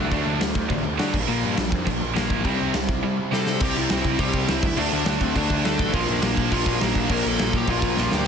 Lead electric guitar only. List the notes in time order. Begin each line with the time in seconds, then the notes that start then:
3.33 A4
3.62 G4
3.77 E4
3.90 E4
4.20 G4
4.50 E4
4.65 E4
4.79 D4
4.93 D4
5.22 C4
5.38 D4
5.66 A4
5.95 F4
6.08 D4
6.24 D4
6.53 F4
6.83 D4
7.11 A#4
7.27 A4
7.56 G4
7.70 F4
8.01 F4
8.14 G4